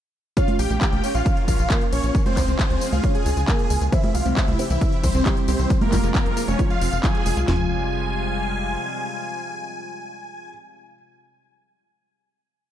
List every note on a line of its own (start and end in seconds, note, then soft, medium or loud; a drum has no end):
0.37 3.89 F3 medium
0.37 2.13 A#3 medium
0.37 2.13 C#4 medium
0.37 0.95 C#4 medium
0.37 2.13 F4 loud
0.37 0.55 F4 medium
0.37 0.95 C#5 loud
0.37 0.55 F5 medium
0.37 0.55 F5 loud
0.37 kick loud
0.37 closed hi-hat medium
0.37 tambourine soft
0.48 closed hi-hat soft
0.48 high conga medium
0.59 0.67 A#1 loud
0.59 0.77 G4 medium
0.59 0.77 G5 medium
0.59 open hi-hat loud
0.59 tambourine medium
0.70 0.78 A#1 medium
0.70 closed hi-hat soft
0.70 tambourine soft
0.70 high conga medium
0.81 1.08 G4 medium
0.81 1.08 G5 medium
0.81 kick loud
0.81 clap loud
0.81 closed hi-hat medium
0.81 tambourine soft
0.92 1.00 A#1 medium
0.92 closed hi-hat soft
0.92 high conga medium
1.04 1.61 C#4 medium
1.04 1.61 C#5 medium
1.04 open hi-hat loud
1.04 tambourine medium
1.15 1.22 A#1 medium
1.15 1.41 F4 medium
1.15 1.41 F5 loud
1.15 closed hi-hat soft
1.15 tambourine soft
1.26 kick loud
1.26 closed hi-hat medium
1.26 tambourine soft
1.37 closed hi-hat soft
1.48 1.56 A#1 loud
1.48 1.84 F4 medium
1.48 1.84 F5 loud
1.48 kick medium
1.48 open hi-hat loud
1.48 tambourine medium
1.59 1.67 A#1 medium
1.59 closed hi-hat soft
1.59 tambourine soft
1.70 2.28 A#3 medium
1.70 2.28 A#4 loud
1.70 kick loud
1.70 clap loud
1.70 closed hi-hat medium
1.70 tambourine soft
1.81 closed hi-hat soft
1.93 2.00 A#1 medium
1.93 2.19 C#4 medium
1.93 2.19 C#5 medium
1.93 2.19 C#5 loud
1.93 open hi-hat loud
1.93 tambourine medium
2.04 2.11 A#1 medium
2.04 closed hi-hat soft
2.04 tambourine soft
2.15 3.91 C#3 medium
2.15 3.91 G#3 medium
2.15 3.91 F4 medium
2.15 3.91 G#4 medium
2.15 kick loud
2.15 closed hi-hat medium
2.15 tambourine soft
2.26 2.53 C4 medium
2.26 2.52 C5 medium
2.26 2.53 C5 loud
2.26 closed hi-hat soft
2.26 high conga medium
2.37 2.45 C#2 loud
2.37 2.95 C4 medium
2.37 2.95 C5 loud
2.37 kick medium
2.37 clap medium
2.37 open hi-hat loud
2.37 tambourine medium
2.48 2.56 C#2 medium
2.48 closed hi-hat soft
2.48 tambourine soft
2.59 2.86 C4 medium
2.59 2.86 C5 loud
2.59 kick loud
2.59 clap loud
2.59 closed hi-hat medium
2.59 tambourine soft
2.70 2.78 C#2 medium
2.70 closed hi-hat soft
2.81 open hi-hat loud
2.81 tambourine medium
2.92 3.00 C#2 medium
2.92 3.10 F4 medium
2.92 3.10 F5 medium
2.92 closed hi-hat soft
2.92 tambourine soft
2.92 high conga medium
3.04 3.46 C#4 medium
3.04 3.46 C#5 medium
3.04 kick loud
3.04 closed hi-hat medium
3.04 tambourine soft
3.15 3.41 G#4 medium
3.15 3.41 G#5 medium
3.15 closed hi-hat soft
3.26 3.34 C#2 loud
3.26 open hi-hat loud
3.26 tambourine medium
3.37 3.45 C#2 medium
3.37 closed hi-hat soft
3.37 tambourine soft
3.48 3.90 A#3 medium
3.48 3.84 G#4 medium
3.48 3.90 A#4 medium
3.48 3.83 G#5 loud
3.48 3.84 G#5 loud
3.48 kick loud
3.48 clap loud
3.48 closed hi-hat medium
3.48 tambourine soft
3.59 closed hi-hat soft
3.70 3.78 C#2 medium
3.70 open hi-hat loud
3.70 tambourine medium
3.81 3.89 C#2 medium
3.81 closed hi-hat soft
3.81 tambourine soft
3.92 7.44 C3 medium
3.92 5.68 E3 medium
3.92 4.02 E3 medium
3.92 4.50 C4 medium
3.92 5.68 E4 medium
3.92 4.10 E4 medium
3.92 5.68 G4 medium
3.92 4.50 C5 loud
3.92 4.10 E5 loud
3.92 kick loud
3.92 closed hi-hat medium
3.92 tambourine soft
4.04 closed hi-hat soft
4.04 high conga medium
4.15 4.22 C2 medium
4.15 4.21 G3 medium
4.15 4.32 F4 medium
4.15 4.32 F5 medium
4.15 4.32 F5 loud
4.15 open hi-hat loud
4.15 tambourine medium
4.26 4.34 C2 medium
4.26 4.35 C4 loud
4.26 closed hi-hat soft
4.26 tambourine soft
4.26 high conga medium
4.37 4.64 E4 medium
4.37 4.64 E5 loud
4.37 4.64 E5 medium
4.37 kick loud
4.37 clap loud
4.37 closed hi-hat medium
4.37 tambourine soft
4.48 4.56 C2 medium
4.48 closed hi-hat soft
4.48 high conga medium
4.59 5.17 C4 medium
4.59 4.65 G4 loud
4.59 5.17 C5 medium
4.59 open hi-hat loud
4.59 tambourine medium
4.70 4.78 C2 medium
4.70 4.74 E3 medium
4.70 4.97 E4 medium
4.70 4.97 E5 loud
4.70 closed hi-hat soft
4.70 tambourine soft
4.81 4.91 E3 medium
4.81 kick loud
4.81 closed hi-hat medium
4.81 tambourine soft
4.92 closed hi-hat soft
5.03 5.11 C2 loud
5.03 5.10 G3 medium
5.03 5.39 C4 medium
5.03 5.39 C5 loud
5.03 kick medium
5.03 open hi-hat loud
5.03 tambourine medium
5.15 5.22 C2 medium
5.15 5.24 C4 loud
5.15 tambourine soft
5.26 5.84 G3 medium
5.26 5.35 E4 medium
5.26 5.84 G4 loud
5.26 kick loud
5.26 clap loud
5.26 closed hi-hat medium
5.26 tambourine soft
5.37 closed hi-hat soft
5.48 5.56 C2 medium
5.48 5.75 C4 medium
5.48 5.54 G4 loud
5.48 5.75 C5 loud
5.48 open hi-hat loud
5.48 tambourine medium
5.59 5.67 C2 medium
5.59 5.63 E3 medium
5.59 closed hi-hat soft
5.59 tambourine soft
5.70 7.46 F3 medium
5.70 5.80 F3 medium
5.70 7.46 G#3 medium
5.70 7.46 F4 loud
5.70 kick loud
5.70 closed hi-hat medium
5.70 tambourine soft
5.81 6.08 A#3 medium
5.81 6.08 A#4 medium
5.81 closed hi-hat soft
5.81 high conga medium
5.92 6.00 F1 loud
5.92 6.50 F3 medium
5.92 5.99 G3 medium
5.92 6.50 F4 loud
5.92 kick medium
5.92 clap medium
5.92 open hi-hat loud
5.92 tambourine medium
6.03 6.11 F1 medium
6.03 6.13 G#3 loud
6.03 closed hi-hat soft
6.03 tambourine soft
6.15 6.41 A#3 medium
6.15 6.24 C4 medium
6.15 6.41 A#4 medium
6.15 6.41 A#4 loud
6.15 kick loud
6.15 clap loud
6.15 closed hi-hat medium
6.15 tambourine soft
6.26 6.34 F1 medium
6.26 closed hi-hat soft
6.37 6.43 F4 loud
6.37 open hi-hat loud
6.37 tambourine medium
6.48 6.56 F1 medium
6.48 6.52 F3 medium
6.48 6.66 C#4 medium
6.48 6.66 C#5 medium
6.48 6.66 C#5 loud
6.48 closed hi-hat soft
6.48 tambourine soft
6.48 high conga medium
6.59 6.69 F3 medium
6.59 7.01 F3 medium
6.59 7.01 F4 medium
6.59 kick loud
6.59 closed hi-hat medium
6.59 tambourine soft
6.70 6.97 F4 medium
6.70 6.97 F5 medium
6.70 closed hi-hat soft
6.81 6.89 F1 loud
6.81 6.88 C4 loud
6.81 open hi-hat loud
6.81 tambourine medium
6.93 7.00 F1 medium
6.93 6.96 C4 medium
6.93 closed hi-hat soft
6.93 tambourine soft
7.04 7.46 F3 medium
7.04 7.10 G#3 medium
7.04 7.46 F4 medium
7.04 7.39 G#4 medium
7.04 7.39 G#5 loud
7.04 7.39 G#5 medium
7.04 kick loud
7.04 clap loud
7.04 closed hi-hat medium
7.04 tambourine soft
7.15 closed hi-hat soft
7.26 7.34 F1 loud
7.26 7.32 G#3 medium
7.26 open hi-hat loud
7.26 tambourine medium
7.37 7.45 C2 medium
7.37 7.41 F4 loud
7.37 closed hi-hat soft
7.37 tambourine soft
7.48 8.77 F1 medium
7.48 10.49 C3 medium
7.48 10.49 F3 medium
7.48 7.69 F3 loud
7.48 10.49 G3 medium
7.48 10.49 G#3 medium
7.48 10.49 F4 loud
7.48 10.49 G#5 loud
7.48 10.49 G#5 medium
7.48 snare loud
7.48 clap medium
7.48 floor tom loud